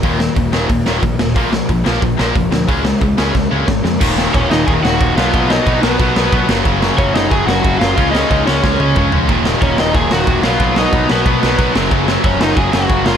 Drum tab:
CC |--------|--------|--------|x-x-x-x-|
HH |o-o-o-o-|o-o-o-o-|o-o-----|--------|
SD |-o-o-o-o|-o-o-o-o|-o-oo-oo|-o-o-o-o|
T1 |--------|--------|--------|--------|
T2 |--------|--------|--------|--------|
FT |--------|--------|--------|--------|
BD |o-o-o-o-|o-o-o-o-|o-o-o-o-|o-o-o-o-|

CC |x-x-x-x-|x-x-x-x-|x-x-----|x-x-x-x-|
HH |--------|--------|--------|--------|
SD |-o-o-o-o|-o-o-o-o|-o-oo---|-o-o-o-o|
T1 |--------|--------|-----o--|--------|
T2 |--------|--------|------o-|--------|
FT |--------|--------|-------o|--------|
BD |o-o-o-o-|o-o-o-o-|o-o-o-o-|o-o-o-o-|

CC |x-x-x-x-|x-x-x-x-|
HH |--------|--------|
SD |-o-o-o-o|-o-o-o-o|
T1 |--------|--------|
T2 |--------|--------|
FT |--------|--------|
BD |o-o-o-o-|o-o-o-o-|